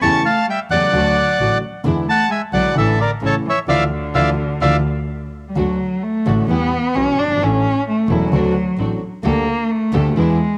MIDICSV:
0, 0, Header, 1, 6, 480
1, 0, Start_track
1, 0, Tempo, 461184
1, 14, Time_signature, 4, 2, 24, 8
1, 11011, End_track
2, 0, Start_track
2, 0, Title_t, "Bandoneon"
2, 0, Program_c, 0, 23
2, 18, Note_on_c, 0, 85, 96
2, 22, Note_on_c, 0, 81, 85
2, 239, Note_off_c, 0, 81, 0
2, 260, Note_on_c, 0, 81, 87
2, 261, Note_off_c, 0, 85, 0
2, 265, Note_on_c, 0, 77, 71
2, 477, Note_off_c, 0, 81, 0
2, 480, Note_off_c, 0, 77, 0
2, 517, Note_on_c, 0, 79, 73
2, 523, Note_on_c, 0, 76, 65
2, 618, Note_off_c, 0, 79, 0
2, 623, Note_off_c, 0, 76, 0
2, 734, Note_on_c, 0, 78, 83
2, 742, Note_on_c, 0, 74, 61
2, 1641, Note_off_c, 0, 78, 0
2, 1645, Note_off_c, 0, 74, 0
2, 2179, Note_on_c, 0, 81, 97
2, 2193, Note_on_c, 0, 78, 71
2, 2390, Note_off_c, 0, 81, 0
2, 2398, Note_off_c, 0, 78, 0
2, 2401, Note_on_c, 0, 80, 86
2, 2412, Note_on_c, 0, 76, 71
2, 2507, Note_off_c, 0, 80, 0
2, 2516, Note_off_c, 0, 76, 0
2, 2634, Note_on_c, 0, 78, 84
2, 2643, Note_on_c, 0, 74, 71
2, 2862, Note_off_c, 0, 74, 0
2, 2881, Note_off_c, 0, 78, 0
2, 2893, Note_on_c, 0, 76, 86
2, 2905, Note_on_c, 0, 69, 65
2, 3114, Note_off_c, 0, 69, 0
2, 3128, Note_on_c, 0, 74, 81
2, 3130, Note_off_c, 0, 76, 0
2, 3137, Note_on_c, 0, 70, 66
2, 3233, Note_off_c, 0, 74, 0
2, 3239, Note_off_c, 0, 70, 0
2, 3389, Note_on_c, 0, 73, 79
2, 3390, Note_on_c, 0, 69, 61
2, 3489, Note_off_c, 0, 73, 0
2, 3490, Note_off_c, 0, 69, 0
2, 3637, Note_on_c, 0, 73, 61
2, 3639, Note_on_c, 0, 76, 77
2, 3736, Note_off_c, 0, 73, 0
2, 3737, Note_off_c, 0, 76, 0
2, 3837, Note_on_c, 0, 74, 84
2, 3842, Note_on_c, 0, 77, 83
2, 3844, Note_on_c, 0, 76, 94
2, 3990, Note_off_c, 0, 74, 0
2, 3993, Note_off_c, 0, 77, 0
2, 3994, Note_off_c, 0, 76, 0
2, 4317, Note_on_c, 0, 76, 74
2, 4317, Note_on_c, 0, 77, 80
2, 4324, Note_on_c, 0, 74, 82
2, 4472, Note_off_c, 0, 76, 0
2, 4472, Note_off_c, 0, 77, 0
2, 4476, Note_off_c, 0, 74, 0
2, 4803, Note_on_c, 0, 77, 83
2, 4804, Note_on_c, 0, 74, 76
2, 4805, Note_on_c, 0, 76, 81
2, 4959, Note_off_c, 0, 77, 0
2, 4960, Note_off_c, 0, 74, 0
2, 4960, Note_off_c, 0, 76, 0
2, 11011, End_track
3, 0, Start_track
3, 0, Title_t, "String section"
3, 0, Program_c, 1, 48
3, 20, Note_on_c, 1, 57, 74
3, 21, Note_on_c, 1, 61, 68
3, 23, Note_on_c, 1, 67, 79
3, 216, Note_off_c, 1, 57, 0
3, 217, Note_off_c, 1, 61, 0
3, 218, Note_off_c, 1, 67, 0
3, 733, Note_on_c, 1, 57, 48
3, 737, Note_on_c, 1, 61, 47
3, 737, Note_on_c, 1, 67, 54
3, 930, Note_off_c, 1, 57, 0
3, 931, Note_off_c, 1, 67, 0
3, 932, Note_off_c, 1, 61, 0
3, 968, Note_on_c, 1, 57, 70
3, 970, Note_on_c, 1, 62, 75
3, 972, Note_on_c, 1, 66, 93
3, 1166, Note_off_c, 1, 57, 0
3, 1167, Note_off_c, 1, 62, 0
3, 1168, Note_off_c, 1, 66, 0
3, 1442, Note_on_c, 1, 57, 49
3, 1445, Note_on_c, 1, 62, 42
3, 1446, Note_on_c, 1, 66, 53
3, 1642, Note_off_c, 1, 57, 0
3, 1643, Note_off_c, 1, 62, 0
3, 1644, Note_off_c, 1, 66, 0
3, 1924, Note_on_c, 1, 56, 70
3, 1927, Note_on_c, 1, 62, 64
3, 1930, Note_on_c, 1, 64, 73
3, 2121, Note_off_c, 1, 56, 0
3, 2123, Note_off_c, 1, 62, 0
3, 2124, Note_off_c, 1, 64, 0
3, 2635, Note_on_c, 1, 56, 45
3, 2635, Note_on_c, 1, 64, 55
3, 2636, Note_on_c, 1, 62, 42
3, 2836, Note_off_c, 1, 56, 0
3, 2836, Note_off_c, 1, 62, 0
3, 2836, Note_off_c, 1, 64, 0
3, 2872, Note_on_c, 1, 57, 76
3, 2876, Note_on_c, 1, 62, 65
3, 2878, Note_on_c, 1, 64, 82
3, 3075, Note_off_c, 1, 57, 0
3, 3076, Note_off_c, 1, 62, 0
3, 3078, Note_off_c, 1, 64, 0
3, 3352, Note_on_c, 1, 57, 46
3, 3357, Note_on_c, 1, 61, 44
3, 3359, Note_on_c, 1, 64, 48
3, 3554, Note_off_c, 1, 57, 0
3, 3557, Note_off_c, 1, 61, 0
3, 3558, Note_off_c, 1, 64, 0
3, 3835, Note_on_c, 1, 62, 81
3, 3835, Note_on_c, 1, 65, 82
3, 3836, Note_on_c, 1, 64, 81
3, 3989, Note_off_c, 1, 62, 0
3, 3989, Note_off_c, 1, 64, 0
3, 3989, Note_off_c, 1, 65, 0
3, 4313, Note_on_c, 1, 62, 85
3, 4313, Note_on_c, 1, 65, 88
3, 4314, Note_on_c, 1, 64, 89
3, 4470, Note_off_c, 1, 62, 0
3, 4470, Note_off_c, 1, 64, 0
3, 4470, Note_off_c, 1, 65, 0
3, 4803, Note_on_c, 1, 65, 86
3, 4805, Note_on_c, 1, 62, 84
3, 4805, Note_on_c, 1, 64, 91
3, 4959, Note_off_c, 1, 65, 0
3, 4960, Note_off_c, 1, 62, 0
3, 4960, Note_off_c, 1, 64, 0
3, 5790, Note_on_c, 1, 57, 69
3, 5790, Note_on_c, 1, 62, 60
3, 5791, Note_on_c, 1, 66, 73
3, 5992, Note_off_c, 1, 57, 0
3, 5992, Note_off_c, 1, 62, 0
3, 5993, Note_off_c, 1, 66, 0
3, 6512, Note_on_c, 1, 57, 70
3, 6514, Note_on_c, 1, 62, 64
3, 6517, Note_on_c, 1, 66, 76
3, 6716, Note_off_c, 1, 57, 0
3, 6716, Note_off_c, 1, 62, 0
3, 6718, Note_off_c, 1, 66, 0
3, 6757, Note_on_c, 1, 55, 69
3, 6759, Note_on_c, 1, 59, 70
3, 6761, Note_on_c, 1, 64, 81
3, 6958, Note_off_c, 1, 55, 0
3, 6959, Note_off_c, 1, 59, 0
3, 6960, Note_off_c, 1, 64, 0
3, 7233, Note_on_c, 1, 55, 46
3, 7234, Note_on_c, 1, 59, 42
3, 7237, Note_on_c, 1, 64, 49
3, 7435, Note_off_c, 1, 55, 0
3, 7436, Note_off_c, 1, 59, 0
3, 7437, Note_off_c, 1, 64, 0
3, 7710, Note_on_c, 1, 61, 61
3, 7711, Note_on_c, 1, 57, 69
3, 7714, Note_on_c, 1, 64, 73
3, 7911, Note_off_c, 1, 61, 0
3, 7912, Note_off_c, 1, 57, 0
3, 7914, Note_off_c, 1, 64, 0
3, 8423, Note_on_c, 1, 57, 72
3, 8427, Note_on_c, 1, 61, 66
3, 8427, Note_on_c, 1, 64, 84
3, 8624, Note_off_c, 1, 57, 0
3, 8627, Note_off_c, 1, 61, 0
3, 8627, Note_off_c, 1, 64, 0
3, 8661, Note_on_c, 1, 60, 75
3, 8663, Note_on_c, 1, 62, 70
3, 8667, Note_on_c, 1, 66, 88
3, 8863, Note_off_c, 1, 60, 0
3, 8864, Note_off_c, 1, 62, 0
3, 8866, Note_off_c, 1, 66, 0
3, 9140, Note_on_c, 1, 60, 50
3, 9142, Note_on_c, 1, 62, 42
3, 9144, Note_on_c, 1, 66, 57
3, 9342, Note_off_c, 1, 60, 0
3, 9343, Note_off_c, 1, 62, 0
3, 9344, Note_off_c, 1, 66, 0
3, 9613, Note_on_c, 1, 58, 71
3, 9615, Note_on_c, 1, 67, 65
3, 9619, Note_on_c, 1, 69, 84
3, 9818, Note_off_c, 1, 58, 0
3, 9818, Note_off_c, 1, 67, 0
3, 9820, Note_off_c, 1, 69, 0
3, 10330, Note_on_c, 1, 58, 71
3, 10332, Note_on_c, 1, 67, 70
3, 10335, Note_on_c, 1, 69, 85
3, 10534, Note_off_c, 1, 58, 0
3, 10535, Note_off_c, 1, 67, 0
3, 10536, Note_off_c, 1, 69, 0
3, 10565, Note_on_c, 1, 56, 76
3, 10568, Note_on_c, 1, 62, 74
3, 10570, Note_on_c, 1, 64, 87
3, 10771, Note_off_c, 1, 56, 0
3, 10772, Note_off_c, 1, 62, 0
3, 10773, Note_off_c, 1, 64, 0
3, 11011, End_track
4, 0, Start_track
4, 0, Title_t, "Cello"
4, 0, Program_c, 2, 42
4, 36, Note_on_c, 2, 61, 90
4, 247, Note_off_c, 2, 61, 0
4, 253, Note_on_c, 2, 57, 75
4, 474, Note_off_c, 2, 57, 0
4, 492, Note_on_c, 2, 55, 73
4, 599, Note_off_c, 2, 55, 0
4, 733, Note_on_c, 2, 54, 77
4, 1640, Note_off_c, 2, 54, 0
4, 2160, Note_on_c, 2, 57, 88
4, 2380, Note_off_c, 2, 57, 0
4, 2387, Note_on_c, 2, 56, 85
4, 2496, Note_off_c, 2, 56, 0
4, 2628, Note_on_c, 2, 54, 79
4, 2854, Note_off_c, 2, 54, 0
4, 2863, Note_on_c, 2, 52, 83
4, 3091, Note_off_c, 2, 52, 0
4, 3100, Note_on_c, 2, 50, 66
4, 3211, Note_off_c, 2, 50, 0
4, 3349, Note_on_c, 2, 49, 73
4, 3458, Note_off_c, 2, 49, 0
4, 3600, Note_on_c, 2, 52, 70
4, 3706, Note_off_c, 2, 52, 0
4, 3822, Note_on_c, 2, 50, 82
4, 5493, Note_off_c, 2, 50, 0
4, 5711, Note_on_c, 2, 55, 53
4, 5782, Note_on_c, 2, 54, 74
4, 5797, Note_off_c, 2, 55, 0
4, 6276, Note_on_c, 2, 57, 84
4, 6292, Note_off_c, 2, 54, 0
4, 6749, Note_off_c, 2, 57, 0
4, 6756, Note_on_c, 2, 59, 94
4, 7234, Note_on_c, 2, 61, 101
4, 7250, Note_off_c, 2, 59, 0
4, 7479, Note_on_c, 2, 62, 89
4, 7495, Note_off_c, 2, 61, 0
4, 7735, Note_on_c, 2, 61, 96
4, 7750, Note_off_c, 2, 62, 0
4, 8199, Note_off_c, 2, 61, 0
4, 8210, Note_on_c, 2, 57, 88
4, 8443, Note_on_c, 2, 54, 90
4, 8458, Note_off_c, 2, 57, 0
4, 9390, Note_off_c, 2, 54, 0
4, 9622, Note_on_c, 2, 58, 91
4, 10106, Note_on_c, 2, 57, 85
4, 10121, Note_off_c, 2, 58, 0
4, 10589, Note_on_c, 2, 56, 84
4, 10605, Note_off_c, 2, 57, 0
4, 11011, Note_off_c, 2, 56, 0
4, 11011, End_track
5, 0, Start_track
5, 0, Title_t, "Upright piano"
5, 0, Program_c, 3, 0
5, 22, Note_on_c, 3, 55, 56
5, 23, Note_on_c, 3, 49, 71
5, 26, Note_on_c, 3, 40, 78
5, 27, Note_on_c, 3, 52, 79
5, 27, Note_on_c, 3, 57, 59
5, 29, Note_on_c, 3, 64, 79
5, 218, Note_off_c, 3, 49, 0
5, 218, Note_off_c, 3, 55, 0
5, 219, Note_off_c, 3, 40, 0
5, 220, Note_off_c, 3, 52, 0
5, 220, Note_off_c, 3, 57, 0
5, 221, Note_off_c, 3, 64, 0
5, 739, Note_on_c, 3, 49, 47
5, 742, Note_on_c, 3, 55, 42
5, 745, Note_on_c, 3, 40, 51
5, 745, Note_on_c, 3, 52, 53
5, 747, Note_on_c, 3, 57, 40
5, 748, Note_on_c, 3, 64, 47
5, 933, Note_off_c, 3, 49, 0
5, 934, Note_off_c, 3, 55, 0
5, 935, Note_off_c, 3, 52, 0
5, 936, Note_off_c, 3, 40, 0
5, 937, Note_off_c, 3, 57, 0
5, 937, Note_off_c, 3, 64, 0
5, 962, Note_on_c, 3, 50, 83
5, 969, Note_on_c, 3, 54, 65
5, 969, Note_on_c, 3, 57, 61
5, 970, Note_on_c, 3, 38, 86
5, 971, Note_on_c, 3, 66, 79
5, 1165, Note_off_c, 3, 50, 0
5, 1166, Note_off_c, 3, 54, 0
5, 1166, Note_off_c, 3, 57, 0
5, 1167, Note_off_c, 3, 38, 0
5, 1167, Note_off_c, 3, 66, 0
5, 1447, Note_on_c, 3, 50, 46
5, 1450, Note_on_c, 3, 45, 60
5, 1450, Note_on_c, 3, 54, 42
5, 1451, Note_on_c, 3, 33, 58
5, 1451, Note_on_c, 3, 57, 40
5, 1455, Note_on_c, 3, 66, 53
5, 1644, Note_off_c, 3, 50, 0
5, 1646, Note_off_c, 3, 45, 0
5, 1646, Note_off_c, 3, 54, 0
5, 1646, Note_off_c, 3, 57, 0
5, 1647, Note_off_c, 3, 33, 0
5, 1648, Note_off_c, 3, 66, 0
5, 1913, Note_on_c, 3, 50, 68
5, 1914, Note_on_c, 3, 40, 75
5, 1914, Note_on_c, 3, 59, 60
5, 1917, Note_on_c, 3, 56, 63
5, 1920, Note_on_c, 3, 52, 77
5, 1920, Note_on_c, 3, 64, 79
5, 2116, Note_off_c, 3, 50, 0
5, 2117, Note_off_c, 3, 40, 0
5, 2117, Note_off_c, 3, 59, 0
5, 2118, Note_off_c, 3, 56, 0
5, 2119, Note_off_c, 3, 64, 0
5, 2120, Note_off_c, 3, 52, 0
5, 2635, Note_on_c, 3, 50, 48
5, 2636, Note_on_c, 3, 47, 53
5, 2637, Note_on_c, 3, 59, 45
5, 2638, Note_on_c, 3, 35, 52
5, 2638, Note_on_c, 3, 56, 43
5, 2640, Note_on_c, 3, 64, 49
5, 2836, Note_off_c, 3, 47, 0
5, 2836, Note_off_c, 3, 50, 0
5, 2837, Note_off_c, 3, 35, 0
5, 2837, Note_off_c, 3, 56, 0
5, 2837, Note_off_c, 3, 59, 0
5, 2838, Note_off_c, 3, 64, 0
5, 2866, Note_on_c, 3, 50, 67
5, 2866, Note_on_c, 3, 52, 62
5, 2867, Note_on_c, 3, 33, 82
5, 2867, Note_on_c, 3, 45, 80
5, 2867, Note_on_c, 3, 57, 62
5, 2872, Note_on_c, 3, 64, 76
5, 3071, Note_off_c, 3, 50, 0
5, 3072, Note_off_c, 3, 33, 0
5, 3072, Note_off_c, 3, 45, 0
5, 3072, Note_off_c, 3, 52, 0
5, 3072, Note_off_c, 3, 57, 0
5, 3075, Note_off_c, 3, 64, 0
5, 3350, Note_on_c, 3, 49, 49
5, 3350, Note_on_c, 3, 52, 43
5, 3353, Note_on_c, 3, 33, 59
5, 3353, Note_on_c, 3, 45, 48
5, 3356, Note_on_c, 3, 57, 42
5, 3356, Note_on_c, 3, 64, 47
5, 3553, Note_off_c, 3, 49, 0
5, 3553, Note_off_c, 3, 52, 0
5, 3555, Note_off_c, 3, 33, 0
5, 3555, Note_off_c, 3, 45, 0
5, 3556, Note_off_c, 3, 57, 0
5, 3556, Note_off_c, 3, 64, 0
5, 3828, Note_on_c, 3, 52, 83
5, 3828, Note_on_c, 3, 53, 87
5, 3831, Note_on_c, 3, 50, 89
5, 3984, Note_off_c, 3, 52, 0
5, 3985, Note_off_c, 3, 53, 0
5, 3987, Note_off_c, 3, 50, 0
5, 4314, Note_on_c, 3, 52, 83
5, 4316, Note_on_c, 3, 50, 85
5, 4317, Note_on_c, 3, 53, 81
5, 4470, Note_off_c, 3, 52, 0
5, 4471, Note_off_c, 3, 50, 0
5, 4472, Note_off_c, 3, 53, 0
5, 4807, Note_on_c, 3, 52, 86
5, 4808, Note_on_c, 3, 50, 86
5, 4810, Note_on_c, 3, 53, 82
5, 4962, Note_off_c, 3, 50, 0
5, 4962, Note_off_c, 3, 52, 0
5, 4963, Note_off_c, 3, 53, 0
5, 5785, Note_on_c, 3, 50, 76
5, 5790, Note_on_c, 3, 54, 58
5, 5791, Note_on_c, 3, 57, 57
5, 5792, Note_on_c, 3, 38, 78
5, 5797, Note_on_c, 3, 66, 69
5, 5992, Note_off_c, 3, 54, 0
5, 5992, Note_off_c, 3, 57, 0
5, 5993, Note_off_c, 3, 38, 0
5, 5994, Note_off_c, 3, 50, 0
5, 5995, Note_off_c, 3, 66, 0
5, 6515, Note_on_c, 3, 50, 70
5, 6515, Note_on_c, 3, 54, 55
5, 6516, Note_on_c, 3, 33, 82
5, 6516, Note_on_c, 3, 45, 75
5, 6518, Note_on_c, 3, 57, 58
5, 6518, Note_on_c, 3, 66, 72
5, 6717, Note_off_c, 3, 33, 0
5, 6717, Note_off_c, 3, 45, 0
5, 6717, Note_off_c, 3, 50, 0
5, 6717, Note_off_c, 3, 54, 0
5, 6718, Note_off_c, 3, 66, 0
5, 6719, Note_off_c, 3, 57, 0
5, 6756, Note_on_c, 3, 52, 75
5, 6758, Note_on_c, 3, 55, 55
5, 6760, Note_on_c, 3, 40, 78
5, 6761, Note_on_c, 3, 59, 63
5, 6767, Note_on_c, 3, 67, 71
5, 6958, Note_off_c, 3, 55, 0
5, 6959, Note_off_c, 3, 40, 0
5, 6960, Note_off_c, 3, 52, 0
5, 6960, Note_off_c, 3, 59, 0
5, 6963, Note_off_c, 3, 67, 0
5, 7239, Note_on_c, 3, 52, 47
5, 7240, Note_on_c, 3, 55, 39
5, 7242, Note_on_c, 3, 35, 55
5, 7244, Note_on_c, 3, 59, 43
5, 7246, Note_on_c, 3, 47, 52
5, 7250, Note_on_c, 3, 67, 52
5, 7438, Note_off_c, 3, 52, 0
5, 7439, Note_off_c, 3, 55, 0
5, 7440, Note_off_c, 3, 35, 0
5, 7441, Note_off_c, 3, 59, 0
5, 7442, Note_off_c, 3, 47, 0
5, 7444, Note_off_c, 3, 67, 0
5, 7544, Note_on_c, 3, 30, 49
5, 7599, Note_off_c, 3, 30, 0
5, 7607, Note_on_c, 3, 31, 55
5, 7660, Note_off_c, 3, 31, 0
5, 7662, Note_on_c, 3, 32, 69
5, 7718, Note_off_c, 3, 32, 0
5, 7718, Note_on_c, 3, 52, 66
5, 7723, Note_on_c, 3, 45, 77
5, 7725, Note_on_c, 3, 33, 77
5, 7725, Note_on_c, 3, 57, 62
5, 7726, Note_on_c, 3, 61, 61
5, 7726, Note_on_c, 3, 69, 70
5, 7916, Note_off_c, 3, 52, 0
5, 7918, Note_off_c, 3, 45, 0
5, 7919, Note_off_c, 3, 33, 0
5, 7919, Note_off_c, 3, 57, 0
5, 7920, Note_off_c, 3, 61, 0
5, 7920, Note_off_c, 3, 69, 0
5, 8434, Note_on_c, 3, 40, 82
5, 8434, Note_on_c, 3, 52, 72
5, 8435, Note_on_c, 3, 28, 89
5, 8435, Note_on_c, 3, 57, 62
5, 8436, Note_on_c, 3, 61, 63
5, 8436, Note_on_c, 3, 69, 71
5, 8630, Note_off_c, 3, 40, 0
5, 8630, Note_off_c, 3, 52, 0
5, 8630, Note_off_c, 3, 57, 0
5, 8631, Note_off_c, 3, 28, 0
5, 8631, Note_off_c, 3, 61, 0
5, 8631, Note_off_c, 3, 69, 0
5, 8662, Note_on_c, 3, 54, 66
5, 8663, Note_on_c, 3, 50, 80
5, 8665, Note_on_c, 3, 60, 62
5, 8665, Note_on_c, 3, 62, 66
5, 8666, Note_on_c, 3, 38, 80
5, 8670, Note_on_c, 3, 69, 82
5, 8864, Note_off_c, 3, 50, 0
5, 8864, Note_off_c, 3, 54, 0
5, 8865, Note_off_c, 3, 60, 0
5, 8865, Note_off_c, 3, 62, 0
5, 8866, Note_off_c, 3, 38, 0
5, 8868, Note_off_c, 3, 69, 0
5, 9145, Note_on_c, 3, 62, 43
5, 9147, Note_on_c, 3, 54, 51
5, 9147, Note_on_c, 3, 60, 42
5, 9148, Note_on_c, 3, 33, 53
5, 9149, Note_on_c, 3, 45, 57
5, 9150, Note_on_c, 3, 69, 49
5, 9345, Note_off_c, 3, 62, 0
5, 9346, Note_off_c, 3, 33, 0
5, 9346, Note_off_c, 3, 54, 0
5, 9346, Note_off_c, 3, 60, 0
5, 9347, Note_off_c, 3, 45, 0
5, 9347, Note_off_c, 3, 69, 0
5, 9626, Note_on_c, 3, 55, 69
5, 9627, Note_on_c, 3, 38, 74
5, 9627, Note_on_c, 3, 58, 56
5, 9629, Note_on_c, 3, 50, 80
5, 9631, Note_on_c, 3, 69, 71
5, 9632, Note_on_c, 3, 62, 62
5, 9824, Note_off_c, 3, 55, 0
5, 9825, Note_off_c, 3, 38, 0
5, 9825, Note_off_c, 3, 50, 0
5, 9825, Note_off_c, 3, 58, 0
5, 9826, Note_off_c, 3, 69, 0
5, 9827, Note_off_c, 3, 62, 0
5, 10341, Note_on_c, 3, 55, 66
5, 10343, Note_on_c, 3, 58, 60
5, 10346, Note_on_c, 3, 62, 65
5, 10347, Note_on_c, 3, 38, 88
5, 10347, Note_on_c, 3, 69, 72
5, 10348, Note_on_c, 3, 50, 82
5, 10539, Note_off_c, 3, 55, 0
5, 10540, Note_off_c, 3, 58, 0
5, 10542, Note_off_c, 3, 38, 0
5, 10542, Note_off_c, 3, 62, 0
5, 10543, Note_off_c, 3, 50, 0
5, 10543, Note_off_c, 3, 69, 0
5, 10580, Note_on_c, 3, 52, 77
5, 10583, Note_on_c, 3, 59, 63
5, 10584, Note_on_c, 3, 40, 76
5, 10585, Note_on_c, 3, 62, 64
5, 10585, Note_on_c, 3, 68, 78
5, 10779, Note_off_c, 3, 52, 0
5, 10780, Note_off_c, 3, 59, 0
5, 10781, Note_off_c, 3, 40, 0
5, 10781, Note_off_c, 3, 62, 0
5, 10781, Note_off_c, 3, 68, 0
5, 11011, End_track
6, 0, Start_track
6, 0, Title_t, "Double bass"
6, 0, Program_c, 4, 43
6, 21, Note_on_c, 4, 40, 80
6, 217, Note_off_c, 4, 40, 0
6, 730, Note_on_c, 4, 40, 63
6, 928, Note_off_c, 4, 40, 0
6, 967, Note_on_c, 4, 38, 91
6, 1165, Note_off_c, 4, 38, 0
6, 1446, Note_on_c, 4, 33, 68
6, 1644, Note_off_c, 4, 33, 0
6, 1924, Note_on_c, 4, 40, 90
6, 2121, Note_off_c, 4, 40, 0
6, 2633, Note_on_c, 4, 35, 61
6, 2835, Note_off_c, 4, 35, 0
6, 2868, Note_on_c, 4, 33, 98
6, 3073, Note_off_c, 4, 33, 0
6, 3344, Note_on_c, 4, 33, 60
6, 3550, Note_off_c, 4, 33, 0
6, 3822, Note_on_c, 4, 38, 82
6, 4007, Note_off_c, 4, 38, 0
6, 4318, Note_on_c, 4, 38, 91
6, 4497, Note_off_c, 4, 38, 0
6, 4804, Note_on_c, 4, 38, 98
6, 4985, Note_off_c, 4, 38, 0
6, 5787, Note_on_c, 4, 38, 83
6, 5991, Note_off_c, 4, 38, 0
6, 6521, Note_on_c, 4, 33, 91
6, 6720, Note_off_c, 4, 33, 0
6, 6748, Note_on_c, 4, 40, 98
6, 6953, Note_off_c, 4, 40, 0
6, 7236, Note_on_c, 4, 35, 53
6, 7437, Note_off_c, 4, 35, 0
6, 7474, Note_on_c, 4, 31, 53
6, 7705, Note_off_c, 4, 31, 0
6, 7711, Note_on_c, 4, 33, 97
6, 7912, Note_off_c, 4, 33, 0
6, 8420, Note_on_c, 4, 28, 103
6, 8623, Note_off_c, 4, 28, 0
6, 8657, Note_on_c, 4, 38, 104
6, 8861, Note_off_c, 4, 38, 0
6, 9133, Note_on_c, 4, 33, 60
6, 9339, Note_off_c, 4, 33, 0
6, 9615, Note_on_c, 4, 38, 90
6, 9819, Note_off_c, 4, 38, 0
6, 10334, Note_on_c, 4, 38, 92
6, 10536, Note_off_c, 4, 38, 0
6, 10569, Note_on_c, 4, 40, 101
6, 10773, Note_off_c, 4, 40, 0
6, 11011, End_track
0, 0, End_of_file